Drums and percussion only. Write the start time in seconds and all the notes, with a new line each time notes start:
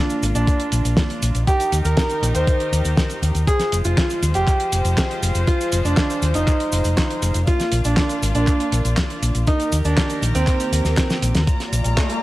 0.10 closed hi-hat, cabasa
0.23 closed hi-hat, cabasa
0.35 closed hi-hat, cabasa
0.47 kick, closed hi-hat, cabasa
0.60 closed hi-hat
0.72 closed hi-hat, cabasa
0.85 closed hi-hat, cabasa
0.97 kick, snare, closed hi-hat, cabasa
1.10 closed hi-hat
1.22 closed hi-hat, cabasa
1.35 closed hi-hat, cabasa
1.47 kick, closed hi-hat, cabasa
1.60 closed hi-hat, cabasa
1.72 closed hi-hat, cabasa
1.85 closed hi-hat, cabasa
1.97 kick, snare, closed hi-hat, cabasa
2.10 closed hi-hat, cabasa
2.23 closed hi-hat, cabasa
2.35 closed hi-hat, cabasa
2.47 kick, closed hi-hat, cabasa
2.60 closed hi-hat
2.73 closed hi-hat, cabasa
2.85 closed hi-hat, cabasa
2.97 kick, snare, closed hi-hat, cabasa
3.10 closed hi-hat, cabasa
3.23 closed hi-hat, cabasa
3.35 closed hi-hat, cabasa
3.47 kick, closed hi-hat, cabasa
3.60 snare, closed hi-hat, cabasa
3.72 closed hi-hat, cabasa
3.85 closed hi-hat, cabasa
3.97 kick, snare, clap, closed hi-hat, cabasa
4.10 closed hi-hat, cabasa
4.23 closed hi-hat, cabasa
4.34 closed hi-hat, cabasa
4.48 kick, clap, closed hi-hat, cabasa
4.60 closed hi-hat
4.72 closed hi-hat, cabasa
4.85 closed hi-hat, cabasa
4.97 kick, snare, clap, closed hi-hat, cabasa
5.11 closed hi-hat
5.23 closed hi-hat, cabasa
5.35 closed hi-hat, cabasa
5.47 kick, closed hi-hat, cabasa
5.61 closed hi-hat, cabasa
5.72 closed hi-hat, cabasa
5.85 closed hi-hat, cabasa
5.97 kick, snare, clap, closed hi-hat, cabasa
6.10 closed hi-hat, cabasa
6.22 closed hi-hat, cabasa
6.34 closed hi-hat, cabasa
6.48 kick, clap, closed hi-hat, cabasa
6.60 closed hi-hat
6.72 closed hi-hat, cabasa
6.84 closed hi-hat, cabasa
6.97 kick, snare, clap, closed hi-hat, cabasa
7.11 closed hi-hat
7.22 closed hi-hat, cabasa
7.34 closed hi-hat, cabasa
7.47 kick, closed hi-hat, cabasa
7.60 snare, closed hi-hat, cabasa
7.72 closed hi-hat, cabasa
7.84 closed hi-hat, cabasa
7.97 kick, snare, clap, closed hi-hat, cabasa
8.09 closed hi-hat, cabasa
8.23 closed hi-hat, cabasa
8.35 closed hi-hat, cabasa
8.47 kick, clap, closed hi-hat, cabasa
8.60 closed hi-hat
8.72 closed hi-hat, cabasa
8.85 closed hi-hat, cabasa
8.97 kick, snare, clap, closed hi-hat, cabasa
9.10 closed hi-hat
9.23 closed hi-hat, cabasa
9.35 closed hi-hat, cabasa
9.47 kick, closed hi-hat, cabasa
9.60 closed hi-hat, cabasa
9.72 closed hi-hat, cabasa
9.85 closed hi-hat, cabasa
9.97 kick, snare, clap, closed hi-hat, cabasa
10.10 closed hi-hat, cabasa
10.23 closed hi-hat, cabasa
10.35 closed hi-hat, cabasa
10.47 kick, clap, closed hi-hat, cabasa
10.60 closed hi-hat, cabasa
10.73 closed hi-hat, cabasa
10.85 snare, closed hi-hat, cabasa
10.97 kick, snare, clap, closed hi-hat, cabasa
11.10 snare, closed hi-hat, cabasa
11.22 closed hi-hat, cabasa
11.35 snare, closed hi-hat, cabasa
11.47 kick, closed hi-hat, cabasa
11.60 snare, closed hi-hat
11.73 closed hi-hat, cabasa
11.84 closed hi-hat, cabasa
11.97 kick, snare, clap, closed hi-hat, cabasa
12.10 closed hi-hat